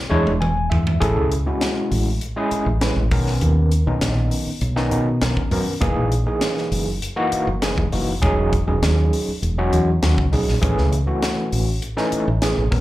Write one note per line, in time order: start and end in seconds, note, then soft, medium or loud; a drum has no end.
0.10 0.25 E2 medium
0.10 0.31 G#3 loud
0.10 0.32 D4 medium
0.10 0.32 E4 medium
0.10 0.32 C#5 loud
0.27 0.67 E1 medium
0.27 high tom medium
0.41 0.48 E4 soft
0.41 0.48 B4 soft
0.41 0.69 G#5 medium
0.41 mid tom medium
0.70 0.98 E2 medium
0.70 0.98 E5 medium
0.70 floor tom medium
0.87 floor tom medium
1.00 1.15 A1 medium
1.00 1.32 C#4 medium
1.00 1.32 E4 medium
1.00 1.32 G#4 loud
1.00 1.32 A4 loud
1.00 kick loud
1.00 closed hi-hat medium
1.17 1.43 C#2 medium
1.32 closed hi-hat medium
1.46 2.09 G#3 medium
1.46 2.08 C#4 medium
1.46 2.09 E4 medium
1.46 2.09 F#4 medium
1.61 snare loud
1.61 closed hi-hat medium
1.91 2.18 A1 medium
1.91 open hi-hat medium
2.21 closed hi-hat medium
2.36 2.67 G#3 loud
2.36 2.68 C#4 medium
2.36 2.68 E4 medium
2.36 2.68 G#4 loud
2.51 muted fretless electric bass stroke soft
2.51 closed hi-hat medium
2.66 2.93 A1 medium
2.81 3.02 G#3 medium
2.81 3.02 C#4 medium
2.81 3.02 E4 medium
2.81 3.02 B4 medium
2.81 snare loud
2.81 closed hi-hat medium
2.96 3.10 A1 medium
3.11 3.38 B1 medium
3.11 3.72 D#3 medium
3.11 3.72 B3 medium
3.11 3.72 C#4 medium
3.11 3.72 A#4 medium
3.11 kick loud
3.11 open hi-hat medium
3.27 snare soft
3.41 3.82 D#2 medium
3.41 closed hi-hat medium
3.72 closed hi-hat medium
3.87 4.00 B1 medium
3.87 4.49 D#3 medium
3.87 4.49 B3 medium
3.87 4.49 C#4 medium
3.87 4.49 D#4 medium
4.01 4.28 A#1 medium
4.01 snare loud
4.01 closed hi-hat medium
4.31 open hi-hat medium
4.47 muted fretless electric bass stroke soft
4.61 4.88 B1 medium
4.61 closed hi-hat medium
4.76 5.07 D#3 loud
4.76 5.08 B3 medium
4.76 5.08 C#4 medium
4.76 5.08 D#4 loud
4.76 snare soft
4.91 5.19 B2 medium
4.91 closed hi-hat medium
5.21 5.35 B1 medium
5.21 5.42 D#3 medium
5.21 5.43 B3 medium
5.21 5.43 C#4 medium
5.21 5.43 A#4 medium
5.21 snare loud
5.21 closed hi-hat medium
5.37 kick medium
5.51 5.65 F#2 medium
5.51 5.73 D#3 medium
5.51 5.73 B3 medium
5.51 5.73 C#4 medium
5.51 5.73 A#4 medium
5.51 open hi-hat medium
5.81 5.95 F#1 medium
5.81 6.12 E3 medium
5.81 6.12 A#3 medium
5.81 6.12 D#4 medium
5.81 6.13 G#4 loud
5.81 kick loud
5.81 closed hi-hat medium
5.96 6.23 A#1 medium
6.12 closed hi-hat medium
6.26 6.89 E3 medium
6.26 6.89 A#3 medium
6.26 6.89 D#4 medium
6.26 6.89 G#4 medium
6.41 snare loud
6.41 closed hi-hat medium
6.57 snare soft
6.72 6.99 F#1 medium
6.72 open hi-hat medium
7.02 closed hi-hat medium
7.16 7.48 E3 medium
7.16 7.48 A#3 loud
7.16 7.48 D#4 medium
7.16 7.48 F#4 loud
7.32 muted fretless electric bass stroke soft
7.32 closed hi-hat medium
7.47 7.74 F#1 medium
7.62 7.83 E3 medium
7.62 7.83 A#3 medium
7.62 7.83 D#4 medium
7.62 7.83 G#4 medium
7.62 snare loud
7.62 closed hi-hat medium
7.78 7.91 F#1 medium
7.78 kick medium
7.92 8.19 F#1 medium
7.92 8.13 E3 medium
7.92 8.13 A#3 medium
7.92 8.13 D#4 medium
7.92 8.13 F#4 medium
7.92 open hi-hat medium
8.22 8.63 E1 medium
8.22 8.53 F#3 medium
8.22 8.53 C#4 medium
8.22 8.53 D#4 medium
8.22 8.53 G#4 loud
8.22 kick loud
8.22 closed hi-hat medium
8.53 kick medium
8.53 closed hi-hat medium
8.67 8.81 E1 medium
8.67 9.29 F#3 medium
8.67 9.30 C#4 medium
8.67 9.30 D#4 medium
8.67 9.30 G#4 medium
8.82 9.09 D#2 medium
8.82 snare loud
8.82 closed hi-hat medium
9.13 open hi-hat medium
9.28 muted fretless electric bass stroke soft
9.42 9.69 E1 medium
9.42 closed hi-hat medium
9.58 9.89 F#3 loud
9.58 9.89 C#4 medium
9.58 9.89 D#4 medium
9.58 9.89 F#4 loud
9.73 10.00 E2 medium
9.73 closed hi-hat medium
10.02 10.16 D#2 medium
10.02 10.23 F#3 medium
10.02 10.23 C#4 medium
10.02 10.23 D#4 medium
10.02 10.23 F#4 medium
10.02 snare loud
10.02 closed hi-hat medium
10.18 10.31 C#2 medium
10.18 kick medium
10.32 10.46 B1 medium
10.32 10.53 F#3 medium
10.32 10.53 C#4 medium
10.32 10.53 D#4 medium
10.32 10.53 G#4 medium
10.32 open hi-hat medium
10.48 10.61 A#1 medium
10.48 snare soft
10.61 10.76 A1 medium
10.61 10.93 E3 medium
10.61 10.93 A3 medium
10.61 10.93 C#4 medium
10.61 10.93 G#4 loud
10.61 kick loud
10.61 closed hi-hat medium
10.78 11.05 C#2 medium
10.78 snare soft
10.93 closed hi-hat medium
11.06 11.69 E3 medium
11.06 11.69 A3 medium
11.06 11.69 C#4 medium
11.06 11.69 F#4 medium
11.22 snare loud
11.22 closed hi-hat medium
11.52 11.79 A1 medium
11.52 open hi-hat medium
11.82 closed hi-hat medium
11.97 12.28 E3 loud
11.97 12.28 A3 medium
11.97 12.28 C#4 medium
11.97 12.28 D#4 loud
11.97 snare soft
12.12 muted fretless electric bass stroke soft
12.12 closed hi-hat medium
12.28 12.54 A1 medium
12.42 12.62 E3 medium
12.42 12.62 A3 medium
12.42 12.63 C#4 medium
12.42 12.63 G#4 medium
12.42 snare loud
12.42 closed hi-hat medium
12.58 12.71 A1 medium
12.71 12.80 B1 medium
12.71 12.80 D#3 medium
12.71 12.80 B3 medium
12.71 12.80 C#4 medium
12.71 12.80 A#4 medium
12.71 kick medium
12.71 open hi-hat medium